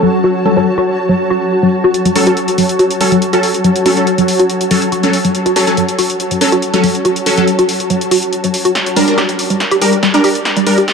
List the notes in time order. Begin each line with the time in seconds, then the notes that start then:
Already playing: F#3 F#4 C#5 A5
0.03 F#3
0.24 F#4
0.45 F#3 C#4 A4
0.57 F#3 C#4 A4
0.78 F#4
1.09 F#3
1.30 F#4
1.63 F#3
1.84 F#4
1.94 closed hi-hat
2.05 F#3, closed hi-hat
2.16 F#3 C#4 A4, open hi-hat
2.27 F#3 C#4 F#4 A4, closed hi-hat
2.37 closed hi-hat
2.48 closed hi-hat
2.58 F#3, open hi-hat
2.69 closed hi-hat
2.79 F#4, closed hi-hat
2.91 closed hi-hat
3.01 F#3 C#4 A4, open hi-hat
3.12 F#3, closed hi-hat
3.22 closed hi-hat
3.33 F#3 C#4 F#4 A4, closed hi-hat
3.43 open hi-hat
3.54 closed hi-hat
3.64 F#3, closed hi-hat
3.76 closed hi-hat
3.86 F#3 C#4 F#4 A4, open hi-hat
3.97 F#3 C#4 A4, closed hi-hat
4.07 closed hi-hat
4.18 F#3, closed hi-hat
4.28 open hi-hat
4.39 F#4, closed hi-hat
4.50 closed hi-hat
4.61 closed hi-hat
4.71 F#3 C#4 A4, open hi-hat
4.82 closed hi-hat
4.92 F#4, closed hi-hat
5.03 F#3 C#4 A4, closed hi-hat
5.13 open hi-hat
5.25 F#3, closed hi-hat
5.35 closed hi-hat
5.46 F#4, closed hi-hat
5.56 F#3 C#4 A4, open hi-hat
5.67 F#3 C#4 A4, closed hi-hat
5.77 F#3, closed hi-hat
5.89 closed hi-hat
5.99 F#4, open hi-hat
6.10 closed hi-hat
6.20 closed hi-hat
6.31 F#3, closed hi-hat
6.41 F#3 C#4 A4, open hi-hat
6.52 F#4, closed hi-hat
6.62 closed hi-hat
6.74 F#3 C#4 A4, closed hi-hat
6.84 F#3, open hi-hat
6.95 closed hi-hat
7.05 F#4, closed hi-hat
7.16 closed hi-hat
7.26 F#3 C#4 A4, open hi-hat
7.37 F#3 C#4 A4, closed hi-hat
7.48 closed hi-hat
7.59 F#4, closed hi-hat
7.69 open hi-hat
7.80 closed hi-hat
7.90 F#3, closed hi-hat
8.01 closed hi-hat
8.11 F#4, open hi-hat
8.23 closed hi-hat
8.33 closed hi-hat
8.44 F#3, closed hi-hat
8.54 open hi-hat
8.65 F#4, closed hi-hat
8.75 G4, snare, closed hi-hat
8.86 D5, closed hi-hat
8.96 G3 D4 A#4, open hi-hat
9.08 G3 D4 A#4, closed hi-hat
9.18 G4, snare, closed hi-hat
9.29 closed hi-hat
9.39 A#5, open hi-hat
9.50 G3, closed hi-hat
9.60 snare, closed hi-hat
9.71 G4, closed hi-hat
9.82 G3 D4 A#4, open hi-hat
9.93 closed hi-hat
10.03 G3, snare, closed hi-hat
10.14 G3 D4 A#4, closed hi-hat
10.24 G4, open hi-hat
10.35 closed hi-hat
10.45 snare, closed hi-hat
10.57 G3, closed hi-hat
10.67 G3 D4 A#4, open hi-hat
10.78 G4, closed hi-hat
10.88 snare, closed hi-hat